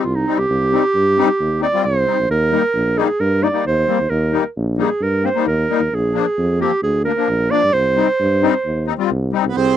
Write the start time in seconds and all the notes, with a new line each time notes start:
0.03 C2 F4
0.15 D#4
0.27 G3 C4 D#4
0.37 C2 G4
0.49 C2
0.72 G3 C4 D#4
0.94 G2
1.18 G3 C4 D#4
1.40 D#2
1.61 C4 D#4 D5
1.74 G3 C4 F4
1.84 C2 C5
2.06 G3 C4 D#4
2.19 A#1
2.29 D#2 A#4
2.51 G3 A#3 D#4
2.74 A#1
2.96 G3 A#3 D#4 G#4
3.20 G2 A#4
3.43 A#3 D#4 D5
3.53 G3 A#3 D#4
3.65 D#2 C5
3.87 G3 A#3 C4
3.99 D#2
4.10 D#2 A#4
4.32 G3 A#3 D#4
4.56 A#1
4.78 G3 A#3 D#4 G#4
5.00 G2 A#4
5.24 A#3 C4 C5
5.35 G3 A#3 D#4
5.46 D#2 A#4
5.70 G3 A#3 D#4
5.80 D#2
5.91 A#1 G#4
6.14 F3 A#3 D4
6.38 F2
6.60 F3 A#3 C4 G4
6.82 D2 G#4
7.05 A#3 D4 A#4
7.17 F3 A#3 D4
7.28 A#1
7.51 F3 A#3 D4 D5
7.63 G2
7.73 C2 C5
7.96 G3 C4 D#4
8.19 G2
8.42 G3 C4 D#4
8.65 D#2
8.87 C4 D#4
8.98 G3 C4 F4
9.10 C2
9.32 G3 C4 D#4
9.44 C2
9.49 B3
9.56 C2 C4 G#4